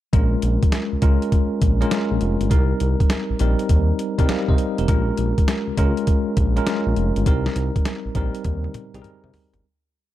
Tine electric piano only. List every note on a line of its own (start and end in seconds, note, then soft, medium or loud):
0.13 0.91 G#3 medium
0.13 0.91 C#4 medium
0.13 0.91 F4 medium
0.13 0.92 A#4 loud
1.02 1.64 G#3 medium
1.02 1.64 C#4 medium
1.02 1.64 F4 medium
1.02 1.64 A#4 loud
1.81 2.42 G#3 medium
1.81 2.42 C#4 medium
1.81 2.42 F4 medium
1.81 2.42 A#4 loud
2.50 3.28 G3 medium
2.50 3.29 C4 medium
2.50 3.29 D#4 medium
2.50 3.29 A#4 medium
3.40 4.02 G3 medium
3.40 4.02 C4 medium
3.40 4.02 D#4 medium
3.40 4.02 A#4 medium
4.18 4.79 G3 medium
4.18 4.80 C4 medium
4.18 4.80 D#4 medium
4.18 4.29 A#4 loud
4.30 4.48 F5 medium
4.49 4.77 C5 medium
4.49 4.77 D#5 medium
4.79 5.07 G4 medium
4.79 4.88 A#4 medium
4.88 5.66 G#3 medium
4.88 5.66 C#4 medium
4.88 5.67 F4 medium
4.88 5.67 A#4 medium
5.77 6.39 G#3 medium
5.77 6.39 C#4 medium
5.77 6.39 F4 medium
5.77 6.40 A#4 medium
6.56 7.17 G#3 medium
6.56 7.17 C#4 medium
6.56 7.18 F4 medium
6.56 7.18 A#4 loud
7.26 8.04 G3 medium
7.26 8.04 C4 medium
7.26 8.04 D#4 medium
7.26 8.05 A#4 medium
8.15 8.77 G3 medium
8.15 8.77 C4 medium
8.15 8.77 D#4 medium
8.15 8.78 A#4 loud
8.94 9.55 G3 medium
8.94 9.55 C4 medium
8.94 9.55 D#4 medium
8.94 8.99 G#4 medium
9.02 9.59 A#4 loud